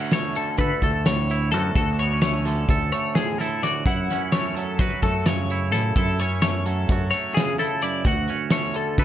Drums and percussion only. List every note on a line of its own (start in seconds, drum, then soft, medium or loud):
0.11 snare loud
0.11 closed hi-hat loud
0.35 closed hi-hat medium
0.57 kick loud
0.57 closed hi-hat loud
0.82 kick medium
0.82 closed hi-hat medium
1.06 snare loud
1.06 closed hi-hat loud
1.30 closed hi-hat medium
1.52 snare soft
1.52 closed hi-hat medium
1.76 kick loud
1.76 closed hi-hat medium
1.99 closed hi-hat medium
2.22 snare loud
2.22 closed hi-hat medium
2.45 snare soft
2.45 closed hi-hat medium
2.69 kick loud
2.69 closed hi-hat medium
2.92 closed hi-hat medium
3.15 snare loud
3.15 closed hi-hat loud
3.40 snare soft
3.40 closed hi-hat medium
3.63 snare soft
3.63 closed hi-hat medium
3.86 kick loud
3.86 closed hi-hat loud
4.10 snare soft
4.10 closed hi-hat medium
4.32 snare loud
4.32 closed hi-hat loud
4.56 closed hi-hat medium
4.79 kick loud
4.79 snare soft
4.79 closed hi-hat loud
5.03 kick medium
5.03 closed hi-hat medium
5.26 snare loud
5.26 closed hi-hat loud
5.50 closed hi-hat medium
5.73 snare soft
5.73 closed hi-hat medium
5.96 kick loud
5.96 closed hi-hat medium
6.19 closed hi-hat medium
6.42 snare loud
6.42 closed hi-hat medium
6.66 closed hi-hat medium
6.89 kick loud
6.89 closed hi-hat medium
7.12 closed hi-hat medium
7.37 snare loud
7.37 closed hi-hat loud
7.59 snare soft
7.59 closed hi-hat medium
7.82 closed hi-hat medium
8.05 kick loud
8.05 closed hi-hat medium
8.28 closed hi-hat medium
8.50 snare loud
8.50 closed hi-hat loud
8.74 closed hi-hat medium
8.98 kick loud
8.98 closed hi-hat loud